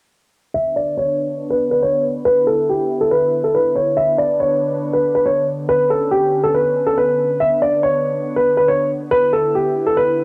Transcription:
0.54 10.24 D3 medium
0.54 3.94 B3 medium
0.54 2.24 D4 medium
0.54 3.94 B4 medium
0.54 0.74 E5 medium
0.76 0.96 D5 medium
0.97 1.48 C#5 medium
1.50 1.70 B4 medium
1.71 1.82 B4 medium
1.83 2.03 C#5 medium
2.25 3.96 E4 medium
2.25 2.45 B4 loud
2.47 2.67 A4 medium
2.69 2.99 G4 medium
3.01 3.11 A4 medium
3.11 3.42 B4 medium
3.44 3.54 A4 medium
3.55 3.74 B4 medium
3.75 3.95 C#5 medium
3.97 10.24 B3 medium
3.97 5.67 D4 medium
3.97 5.67 B4 medium
3.97 4.17 E5 medium
4.18 4.38 D5 medium
4.40 4.90 C#5 medium
4.93 5.13 B4 medium
5.15 5.25 B4 medium
5.26 5.46 C#5 medium
5.69 7.38 C#4 medium
5.69 9.08 B4 medium
5.69 5.89 B4 loud
5.90 6.10 A4 medium
6.11 6.42 G4 medium
6.44 6.54 A4 medium
6.54 6.85 B4 medium
6.86 6.96 A4 medium
6.98 7.38 B4 medium
7.40 9.10 D4 medium
7.40 7.60 E5 medium
7.62 7.81 D5 medium
7.83 8.33 C#5 medium
8.36 8.56 B4 medium
8.57 8.67 B4 medium
8.68 8.88 C#5 medium
9.11 10.24 E4 medium
9.11 9.31 B4 loud
9.11 10.24 B4 medium
9.33 9.53 A4 medium
9.55 9.85 G4 medium
9.86 9.96 A4 medium
9.97 10.24 B4 medium

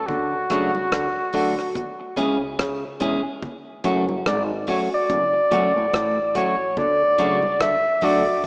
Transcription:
0.06 0.47 D2 loud
0.06 0.34 D3 medium
0.06 2.58 F#4 medium
0.06 kick loud
0.06 low conga medium
0.50 0.89 C#2 medium
0.50 0.76 C#3 medium
0.50 0.70 F#3 medium
0.50 0.70 A3 medium
0.50 0.70 D4 medium
0.50 0.70 F#4 medium
0.50 kick loud
0.50 cross-stick medium
0.50 closed hi-hat medium
0.75 high conga medium
0.92 1.15 D2 medium
0.92 1.07 D3 medium
0.92 kick loud
0.92 cross-stick loud
0.92 high conga soft
1.33 1.73 D2 medium
1.33 1.59 D3 medium
1.33 1.53 F#3 medium
1.33 1.53 A3 medium
1.33 1.54 D4 medium
1.33 1.54 F#4 medium
1.33 kick medium
1.33 open hi-hat medium
1.59 cross-stick medium
1.75 kick loud
1.75 hi-hat pedal medium
1.75 low conga medium
2.00 muted clean electric guitar stroke soft
2.16 2.56 C#2 loud
2.16 2.42 C#3 medium
2.16 2.37 G#3 medium
2.16 2.37 C#4 loud
2.16 2.37 E4 medium
2.16 2.37 G#4 medium
2.16 kick medium
2.16 closed hi-hat medium
2.16 low conga medium
2.59 2.98 C#2 medium
2.59 2.84 C#3 medium
2.59 kick loud
2.59 cross-stick loud
3.00 3.24 E1 loud
3.00 3.16 E2 medium
3.00 3.20 G#3 medium
3.00 3.20 C#4 medium
3.00 3.21 E4 medium
3.00 3.21 G#4 medium
3.00 kick medium
3.00 closed hi-hat medium
3.42 kick loud
3.42 low conga medium
3.84 4.23 F#1 medium
3.84 4.09 F#2 medium
3.84 4.04 F#3 medium
3.84 4.04 A3 medium
3.84 4.04 C#4 medium
3.84 4.04 F#4 medium
3.84 kick loud
3.84 closed hi-hat medium
4.09 high conga medium
4.26 4.65 G#1 loud
4.26 4.51 G#2 medium
4.26 4.43 D5 medium
4.26 kick loud
4.26 cross-stick loud
4.26 high conga medium
4.67 4.87 F#3 medium
4.67 4.88 A3 medium
4.67 4.88 C#4 medium
4.67 4.88 F#4 medium
4.67 4.80 C#5 medium
4.67 kick medium
4.67 open hi-hat medium
4.94 6.32 D5 loud
5.10 5.33 F#1 medium
5.10 5.25 F#2 medium
5.10 kick loud
5.10 hi-hat pedal medium
5.10 low conga medium
5.34 muted clean electric guitar stroke soft
5.51 5.75 F#1 medium
5.51 5.66 F#2 medium
5.51 5.71 F#3 medium
5.51 5.71 A3 medium
5.51 5.71 C#4 medium
5.51 5.71 F#4 medium
5.51 kick medium
5.51 closed hi-hat medium
5.51 low conga medium
5.76 5.93 A1 medium
5.76 5.86 A2 medium
5.93 6.78 A1 medium
5.93 6.18 A2 medium
5.93 kick loud
5.93 cross-stick loud
6.35 6.54 F#3 medium
6.35 6.55 A3 medium
6.35 6.55 C#4 medium
6.35 6.55 F#4 medium
6.35 6.75 C#5 medium
6.35 kick loud
6.35 closed hi-hat medium
6.77 7.16 D2 loud
6.77 7.02 D3 medium
6.77 7.57 D5 loud
6.77 kick loud
6.77 low conga medium
7.18 7.58 C#2 medium
7.18 7.44 C#3 medium
7.18 7.38 F#3 medium
7.18 7.38 A3 medium
7.18 7.38 D4 medium
7.18 7.38 F#4 medium
7.18 kick loud
7.18 closed hi-hat medium
7.42 high conga medium
7.60 7.83 D2 medium
7.60 7.76 D3 medium
7.60 8.05 E5 loud
7.60 kick loud
7.60 cross-stick loud
7.60 high conga medium
8.01 8.41 D2 medium
8.01 8.27 D3 medium
8.01 8.22 F#3 medium
8.01 8.22 A3 medium
8.01 8.22 D4 medium
8.01 8.22 F#4 medium
8.01 8.45 D5 loud
8.01 kick loud
8.01 open hi-hat medium
8.44 low conga medium

